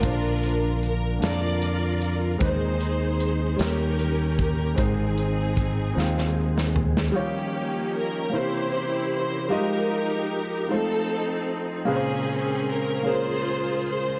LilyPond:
<<
  \new Staff \with { instrumentName = "String section" } { \time 6/8 \key aes \major \tempo 4. = 51 << { bes'4 bes'8 d''4 r8 | c''4. bes'4 bes'8 | aes'2~ aes'8 r8 | g'4 bes'8 c''4 c''8 |
bes'4. a'4 r8 | aes'4 bes'8 c''4 c''8 | } \\ { <d' f'>4 r8 <f' bes'>4. | <ees' aes'>4. <des' g'>4. | <c' ees'>2~ <c' ees'>8 r8 | <bes des'>4. <e' g'>4. |
<ees' g'>4. <c' ees'>4. | <c' des'>4. <f' aes'>4. | } >> }
  \new Staff \with { instrumentName = "Grand piano" } { \time 6/8 \key aes \major <bes, bes d' f' c'' d''>4. <bes d' f' d''>4. | <ees aes c' ees' ces'' c''>4. <ees g des' ees' bes'>4. | <aes, aes c' ees' c''>4. <aes c' ees' f' g''>4. | <ees g ees' f' des''>4. <c bes des' e' c''>4. |
<g aes f' g' ees''>4. <aes a ees' f' c''>4. | <bes, des bes aes' ces'' c''>4. <bes des' aes' bes'>4. | }
  \new Staff \with { instrumentName = "Tonewheel organ" } { \time 6/8 \key aes \major <c d f bes f'>2. | <ees aes c' g' aes'>4. <ees bes des' g'>4. | <ees aes c' g' aes'>2. | <f des' ees' g'>4. <c e des' bes'>4. |
<f aes ees' ges' g'>4. <f c' ees' a'>4. | <des aes bes' c''>2. | }
  \new Staff \with { instrumentName = "Fingered electric bass" } { \clef bass \time 6/8 \key aes \major bes,,4. f,4. | ees,4. ees,4. | aes,,4. ees,4. | r2. |
r2. | r2. | }
  \new DrumStaff \with { instrumentName = "Drums" } \drummode { \time 6/8 <hh bd>8 hh8 hh8 <hh sn>8 hh8 hh8 | <hh bd>8 hh8 hh8 <hh sn>8 hh8 <hh bd>8 | <hh bd>8 hh8 <hh bd>8 sn16 sn8 sn16 tomfh16 sn16 | r4. r4. |
r4. r4. | r4. r4. | }
>>